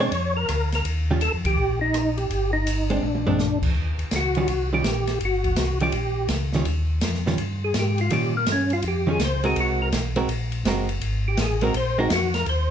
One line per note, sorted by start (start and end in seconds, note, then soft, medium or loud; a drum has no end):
0.00 0.11 G#3 medium
0.00 0.11 C4 medium
0.00 0.12 D4 medium
0.00 0.34 C#5 medium
0.11 0.46 F2 medium
0.11 ride medium
0.37 0.70 A#4 medium
0.48 0.82 D2 medium
0.48 cross-stick medium
0.48 hi-hat pedal soft
0.48 ride medium
0.72 0.85 A#4 medium
0.72 snare soft
0.72 ride soft
0.85 1.30 D#2 medium
0.85 ride medium
1.11 1.21 D#3 medium
1.11 1.21 G3 medium
1.11 1.21 C#4 medium
1.11 1.21 F4 medium
1.21 1.32 A4 medium
1.21 hi-hat pedal medium
1.21 ride medium
1.33 1.44 F2 medium
1.45 1.57 D2 medium
1.45 1.79 G4 medium
1.45 kick medium
1.45 ride medium
1.58 2.27 A#1 medium
1.81 2.19 D#4 medium
1.94 cross-stick medium
1.94 hi-hat pedal medium
1.94 ride medium
2.17 2.51 G4 medium
2.17 ride soft
2.30 2.99 G1 medium
2.30 ride medium
2.53 2.91 D#4 medium
2.67 hi-hat pedal medium
2.67 ride medium
2.90 3.01 G#3 medium
2.90 3.02 C4 medium
2.90 3.59 D4 medium
2.90 3.02 D4 medium
2.90 ride soft
3.02 3.58 A#1 medium
3.02 high tom soft
3.15 high tom medium
3.27 3.38 G#3 medium
3.27 3.38 C4 medium
3.27 3.38 D4 medium
3.27 floor tom medium
3.39 snare soft
3.39 hi-hat pedal soft
3.62 3.69 A#1 soft
3.62 kick medium
3.62 crash medium
3.75 3.97 D#2 medium
3.98 4.05 D#2 soft
3.98 ride soft
4.11 4.47 C#2 medium
4.11 snare medium
4.11 hi-hat pedal soft
4.11 ride medium
4.16 4.70 F#4 medium
4.35 4.47 D#3 medium
4.35 4.48 G3 medium
4.35 4.48 C#4 medium
4.35 4.48 F4 medium
4.35 ride soft
4.47 4.83 C2 medium
4.47 ride medium
4.73 4.84 D#3 medium
4.73 4.84 G3 medium
4.73 4.84 C#4 medium
4.73 4.84 F4 medium
4.73 5.19 G4 medium
4.83 5.19 A#1 medium
4.83 snare medium
4.83 hi-hat pedal medium
4.83 ride medium
5.07 snare soft
5.07 ride soft
5.20 5.55 G1 medium
5.20 ride soft
5.25 5.79 F#4 medium
5.44 kick soft
5.44 ride soft
5.56 5.92 C2 medium
5.56 snare medium
5.56 hi-hat pedal medium
5.56 ride medium
5.80 5.92 D#3 medium
5.80 5.93 G3 medium
5.80 5.93 C#4 medium
5.80 5.93 F4 medium
5.80 6.27 G4 medium
5.80 ride soft
5.92 6.28 A#1 medium
5.92 ride medium
6.28 6.64 C#2 medium
6.28 snare medium
6.28 hi-hat pedal soft
6.28 ride medium
6.53 6.65 D#3 medium
6.53 6.66 G3 medium
6.53 6.66 C#4 medium
6.53 6.66 F4 medium
6.53 snare soft
6.65 7.00 D#2 medium
6.65 ride soft
7.01 7.37 F2 medium
7.01 snare medium
7.01 hi-hat pedal medium
7.01 ride medium
7.14 snare soft
7.26 7.38 D#3 medium
7.26 7.38 G3 medium
7.26 7.38 C#4 medium
7.26 7.38 F4 medium
7.26 snare soft
7.38 7.74 G2 medium
7.38 ride medium
7.64 7.76 G#4 medium
7.74 8.10 G#2 medium
7.74 snare medium
7.74 hi-hat pedal medium
7.74 ride medium
7.79 8.00 G4 medium
7.98 8.12 F4 medium
7.98 ride soft
8.10 8.46 A#2 medium
8.10 8.32 D#3 medium
8.10 8.33 G3 medium
8.10 8.33 C#4 medium
8.10 8.33 F4 medium
8.10 8.35 G4 medium
8.10 ride medium
8.37 8.48 A#3 medium
8.46 8.82 G2 medium
8.46 snare medium
8.46 hi-hat pedal medium
8.46 ride medium
8.52 8.73 C#4 medium
8.70 8.84 F4 medium
8.70 ride soft
8.82 9.19 F2 medium
8.82 ride medium
8.88 9.09 G4 medium
9.07 9.18 D#3 medium
9.07 9.19 G3 medium
9.07 9.19 C#4 medium
9.07 9.19 F4 medium
9.07 9.21 G#4 medium
9.19 9.55 C#2 medium
9.19 snare medium
9.19 hi-hat pedal medium
9.19 ride medium
9.24 9.45 C5 medium
9.43 9.90 G#3 medium
9.43 9.90 C4 medium
9.43 9.91 F#4 medium
9.43 9.57 G#4 medium
9.43 9.91 A#4 medium
9.43 ride soft
9.56 9.91 C2 medium
9.56 ride medium
9.60 9.81 F#4 medium
9.82 9.89 A#4 medium
9.92 10.27 B1 medium
9.92 snare medium
9.92 hi-hat pedal medium
9.92 ride medium
10.16 10.27 G#3 medium
10.16 10.28 C4 medium
10.16 10.28 F#4 medium
10.16 10.28 A#4 medium
10.16 ride soft
10.28 10.64 A#1 medium
10.28 ride medium
10.52 ride soft
10.65 11.00 F#1 medium
10.65 10.87 G#3 medium
10.65 10.87 C4 medium
10.65 10.87 F#4 medium
10.65 10.88 A#4 medium
10.65 snare medium
10.65 hi-hat pedal soft
10.65 ride medium
10.89 ride soft
11.01 11.36 G#1 medium
11.01 ride medium
11.28 11.39 G4 medium
11.37 11.72 A1 medium
11.37 snare medium
11.37 hi-hat pedal soft
11.37 ride medium
11.42 11.63 G#4 medium
11.61 11.73 G#3 medium
11.61 11.73 C4 medium
11.61 11.74 F#4 medium
11.61 11.74 A#4 medium
11.61 ride soft
11.74 12.09 A#1 medium
11.74 11.98 C5 medium
11.74 ride medium
11.98 12.09 G#3 medium
11.98 12.09 C4 medium
11.98 12.10 D#4 medium
11.98 12.10 F#4 medium
11.98 12.10 A#4 medium
12.10 12.45 F2 medium
12.10 12.34 F#4 medium
12.10 snare medium
12.10 hi-hat pedal soft
12.10 ride medium
12.34 12.46 A#4 medium
12.34 snare soft
12.34 ride soft
12.46 12.71 D#2 medium
12.46 12.71 C5 medium
12.46 ride medium